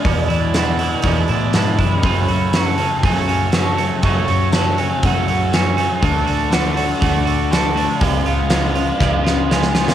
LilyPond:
<<
  \new Staff \with { instrumentName = "Soft synth lead" } { \time 4/4 \key fis \minor \tempo 4 = 120 d''4 fis''4 r4 a''8 b''8~ | b''4 a''4 gis''4 a''4 | cis'''4 a''8 gis''8 fis''4 gis''4 | a''4 fis''4 fis''4 a''4 |
eis''2. gis''4 | }
  \new Staff \with { instrumentName = "Overdriven electric guitar" } { \time 4/4 \key fis \minor <e, b, e gis d' e'>8 <e gis d' e'>8 <e gis d' e'>8 <e gis d' e'>8 <e, b, e gis d' e'>8 <e gis d' e'>8 <e gis d' e'>8 <e gis d' e'>8 | <fis, cis fis a cis' fis'>8 <fis a cis' fis'>8 <fis a cis' fis'>8 <fis a cis' fis'>8 <fis, cis fis a cis' fis'>8 <fis a cis' fis'>8 <fis a cis' fis'>8 <fis a cis' fis'>8 | <fis, cis fis a cis' fis'>8 <fis a cis' fis'>8 <fis a cis' fis'>8 <fis a cis' fis'>8 <fis, cis fis a cis' fis'>8 <fis a cis' fis'>8 <fis a cis' fis'>8 <fis a cis' fis'>8 | <d a d' fis'>8 <a d' fis'>8 <d a d' fis'>8 <a d' fis'>8 <d a d' fis'>8 <a d' fis'>8 <d a d' fis'>8 <a d' fis'>8 |
<cis eis gis b eis'>8 <gis b eis'>8 <eis gis b eis'>8 <gis b eis'>8 <cis eis gis b eis'>8 <gis b eis'>8 <eis gis b eis'>8 <gis b eis'>8 | }
  \new Staff \with { instrumentName = "Distorted electric guitar" } { \clef bass \time 4/4 \key fis \minor <e, b, e>8 <b, e>8 <e, b, e>8 <b, e>8 <e, b, e>8 <b, e>8 <e, b, e>8 <b, e>8 | <fis, cis fis>8 <cis fis>8 <fis, cis fis>8 <cis fis>8 <fis, cis fis>8 <cis fis>8 <fis, cis fis>8 <cis fis>8 | <fis, cis fis>8 <cis fis>8 <fis, cis fis>8 <cis fis>8 <fis, cis fis>8 <cis fis>8 <fis, cis fis>8 <cis fis>8 | <d a d'>8 <a d'>8 <d a d'>8 <a d'>8 <d a d'>8 <a d'>8 <d a d'>8 <a d'>8 |
<cis gis cis'>8 <gis cis'>8 <cis gis cis'>8 <gis cis'>8 <cis gis cis'>8 <gis cis'>8 <cis gis cis'>8 <gis cis'>8 | }
  \new Staff \with { instrumentName = "Picked electric bass" } { \clef bass \time 4/4 \key fis \minor e,8 e,4. e,8 a,8 gis,8 fis,8 | fis,8 fis,4. fis,2 | fis,8 fis,4. fis,2 | d,8 d,4. d,2 |
cis,8 cis,4. cis,2 | }
  \new DrumStaff \with { instrumentName = "Drums" } \drummode { \time 4/4 <hho bd>8 hho8 <hho sn>8 hho8 <hho bd>8 hho8 <hho sn>8 <hho bd>8 | <hho bd>8 hho8 <hho sn>8 hho8 <hho bd>8 hho8 <hho sn>8 hho8 | <hho bd>8 hho8 <hho sn>8 hho8 <hho bd>8 hho8 <hho sn>8 hho8 | <hho bd>8 hho8 <hho sn>8 hho8 <hho bd>8 hho8 <hho sn>8 hho8 |
<hho bd>8 hho8 <hho sn>8 hho8 <bd sn>8 sn8 sn16 sn16 sn16 sn16 | }
>>